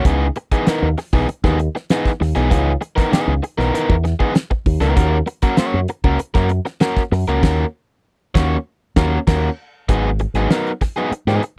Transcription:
0.05 C#2 E3 B3 D#4 G#4, kick, closed hi-hat
0.36 muted overdriven electric guitar stroke, closed hi-hat
0.52 E3 B3 D#4 G#4, muted fingered electric bass stroke, kick, closed hi-hat
0.67 E3 B3 D#4 A#4, muted fingered electric bass stroke, snare, closed hi-hat
0.82 D#2
0.98 muted overdriven electric guitar stroke, snare, open hi-hat
1.13 B1 E3 B3 D#4 G#4, kick
1.28 muted overdriven electric guitar stroke, closed hi-hat
1.44 D#2 E3 B3 D#4 G#4, kick, snare
1.59 muted overdriven electric guitar stroke, closed hi-hat
1.75 muted overdriven electric guitar stroke, snare
1.90 E3 B3 D#4 G#4, snare, closed hi-hat
2.05 kick, snare
2.20 D#2, muted overdriven electric guitar stroke, snare, open hi-hat
2.35 B1 E3 B3 D#4 G#4, closed hi-hat
2.50 C#2 E3 B3 D#4 G#4, kick, closed hi-hat
2.81 muted overdriven electric guitar stroke, closed hi-hat
2.96 E3 B3 D#4 A#4, muted fingered electric bass stroke, kick, snare, closed hi-hat
3.11 E3 B3 D#4 G#4, muted fingered electric bass stroke, snare, closed hi-hat
3.27 C#2
3.43 muted overdriven electric guitar stroke, closed hi-hat
3.58 B1 E3 B3 D#4 A#4, snare
3.74 E3 B3 D#4 A#4, closed hi-hat
3.89 E2, kick
4.04 muted overdriven electric guitar stroke, snare, closed hi-hat
4.20 E3 B3 D#4 G#4, kick
4.35 muted overdriven electric guitar stroke, snare, closed hi-hat
4.51 muted overdriven electric guitar stroke, kick
4.66 D#2, kick, open hi-hat
4.81 C#2 E3 B3 D#4 A#4, snare, closed hi-hat
4.96 D#2 A#3 C#4 F#4 A#4, kick, closed hi-hat
5.26 muted overdriven electric guitar stroke, closed hi-hat
5.42 A#3 C#4 F#4 A#4, muted fingered electric bass stroke, kick, closed hi-hat
5.57 A#3 C#4 F#4 C#5, muted fingered electric bass stroke, snare, closed hi-hat
5.74 F#2
5.88 muted overdriven electric guitar stroke, closed hi-hat
6.04 C#2 A#3 C#4 F#4 A#4, kick
6.19 muted overdriven electric guitar stroke, muted fingered electric bass stroke, closed hi-hat
6.34 F#2 A#3 C#4 F#4 A#4, kick, snare
6.49 muted overdriven electric guitar stroke, closed hi-hat
6.65 muted overdriven electric guitar stroke, snare
6.80 A#3 C#4 F#4 A#4, snare, closed hi-hat
6.96 kick, snare
7.12 F#2, muted overdriven electric guitar stroke, snare, open hi-hat
7.27 C#2 A#3 C#4 F#4 A#4, closed hi-hat
7.43 D#2 A#3 C#4 F#4 A#4, kick, snare, crash
8.35 D#2 A#3 C#4 F#4 C#5, kick, snare
8.96 D#2 A#3 C#4 F#4 A#4, kick, snare
9.27 D#2 A#3 C#4 F#4 A#4, kick, snare, crash
9.89 G#1 F#3 B3 D#4 G#4, kick, closed hi-hat
10.19 muted overdriven electric guitar stroke, closed hi-hat
10.34 G#1 F#3 B3 D#4 G#4, closed hi-hat
10.51 F#3 B3 D#4 A#4, snare
10.67 closed hi-hat
10.81 muted overdriven electric guitar stroke, kick, snare, open hi-hat
10.96 F#3 B3 D#4 G#4, closed hi-hat
11.11 muted fingered electric bass stroke, muted overdriven electric guitar stroke, closed hi-hat
11.27 G#2 F#3 B3 D#4 G#4, snare, closed hi-hat
11.43 muted overdriven electric guitar stroke, closed hi-hat

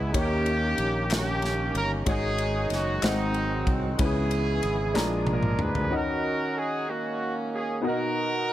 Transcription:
Already playing: C#2 C#3 E3 G#3 B3 E4 G#4 C#5
0.12 D#2 D#3 A#3 C#4 D#4 G4 C#5, kick, ride
0.16 D#3 A#3 C#4 F#4 G4
0.23 G4
0.46 ride
0.78 A#1, ride
1.10 A#3 C#4 G4, snare, clap, ride
1.42 snare, ride
1.74 G1 A#4, ride
2.06 G#2 D#3 G#3 C#4 D#4 F#4 G#4 C#5, kick, ride
2.38 ride
2.70 F#1, snare, ride
2.75 F#4
3.02 G#1 G#2 D#3 F#3 G#3 C4 D#4 F#4 C5, snare, clap, ride
3.06 C4 D#4
3.34 ride
3.67 C2, kick, ride
3.98 C#2 C#3 E3 G#3 B3 C#4 E4 G#4 B4, kick, ride
4.03 B3 E4 G#4
4.31 ride
4.63 G#1, ride
4.94 A#1 A#2 F3 G#3 C#4 D4 G#4 A#5, snare, clap
4.98 F4
5.03 D4
5.27 A#4, high tom
5.43 mid tom
5.59 D2 B4, mid tom
5.75 floor tom
5.90 D#3 C#4 D#4 F#4 A#4 D#5
5.94 C#4 F#4 A#4
6.57 G#4
6.88 A#3 C#4 F#4
7.53 G#4
7.81 B2 B3 D#4 F#4 A#4 D#5
7.86 D#4 F#4 A#4

